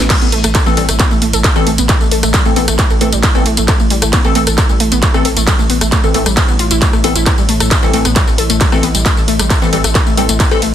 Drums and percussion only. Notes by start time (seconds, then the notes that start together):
0.10 kick, clap, closed hi-hat, crash, ride, tambourine
0.22 tambourine
0.32 open hi-hat
0.44 cross-stick, closed hi-hat, tambourine
0.55 kick, clap, closed hi-hat, ride, tambourine
0.66 tambourine
0.77 open hi-hat
0.89 cross-stick, closed hi-hat, tambourine
0.99 kick, clap, closed hi-hat, ride, tambourine
1.11 tambourine
1.22 open hi-hat
1.33 closed hi-hat, tambourine
1.44 kick, clap, closed hi-hat, ride, tambourine
1.56 cross-stick, tambourine
1.67 open hi-hat
1.78 closed hi-hat, tambourine
1.89 kick, clap, closed hi-hat, ride, tambourine
2.01 tambourine
2.11 open hi-hat
2.23 cross-stick, closed hi-hat, tambourine
2.34 kick, clap, closed hi-hat, ride, tambourine
2.45 tambourine
2.56 open hi-hat
2.68 cross-stick, closed hi-hat, tambourine
2.79 kick, clap, closed hi-hat, ride, tambourine
2.90 tambourine
3.01 open hi-hat
3.13 closed hi-hat, tambourine
3.23 kick, clap, closed hi-hat, ride, tambourine
3.35 cross-stick, tambourine
3.46 open hi-hat
3.57 closed hi-hat, tambourine
3.68 kick, clap, closed hi-hat, ride, tambourine
3.80 tambourine
3.90 open hi-hat
4.02 cross-stick, closed hi-hat, tambourine
4.13 kick, clap, closed hi-hat, ride, tambourine
4.24 tambourine
4.35 open hi-hat
4.47 cross-stick, closed hi-hat, tambourine
4.58 kick, clap, closed hi-hat, ride, tambourine
4.69 tambourine
4.80 open hi-hat
4.92 closed hi-hat, tambourine
5.03 kick, clap, closed hi-hat, ride, tambourine
5.14 cross-stick, tambourine
5.25 open hi-hat
5.37 closed hi-hat, tambourine
5.47 kick, clap, closed hi-hat, ride, tambourine
5.59 tambourine
5.70 open hi-hat
5.81 cross-stick, closed hi-hat, tambourine
5.92 kick, clap, closed hi-hat, ride, tambourine
6.04 tambourine
6.14 open hi-hat
6.26 cross-stick, closed hi-hat, tambourine
6.37 kick, clap, closed hi-hat, ride, tambourine
6.48 tambourine
6.59 open hi-hat
6.71 closed hi-hat, tambourine
6.82 kick, clap, closed hi-hat, ride, tambourine
6.93 cross-stick, tambourine
7.04 open hi-hat
7.16 closed hi-hat, tambourine
7.26 kick, clap, closed hi-hat, ride, tambourine
7.38 tambourine
7.49 open hi-hat
7.60 cross-stick, closed hi-hat, tambourine
7.71 kick, clap, closed hi-hat, ride, tambourine
7.83 tambourine
7.93 open hi-hat
8.05 cross-stick, closed hi-hat, tambourine
8.16 kick, clap, closed hi-hat, ride, tambourine
8.27 tambourine
8.38 open hi-hat
8.50 closed hi-hat, tambourine
8.61 kick, clap, closed hi-hat, ride, tambourine
8.72 cross-stick, tambourine
8.83 open hi-hat
8.95 closed hi-hat, tambourine
9.06 kick, clap, closed hi-hat, ride, tambourine
9.17 tambourine
9.28 open hi-hat
9.39 cross-stick, closed hi-hat, tambourine
9.50 kick, clap, closed hi-hat, ride, tambourine
9.62 tambourine
9.73 open hi-hat
9.84 cross-stick, closed hi-hat, tambourine
9.95 kick, clap, closed hi-hat, ride, tambourine
10.07 tambourine
10.17 open hi-hat
10.29 closed hi-hat, tambourine
10.40 kick, clap, closed hi-hat, ride, tambourine
10.51 cross-stick, tambourine
10.62 open hi-hat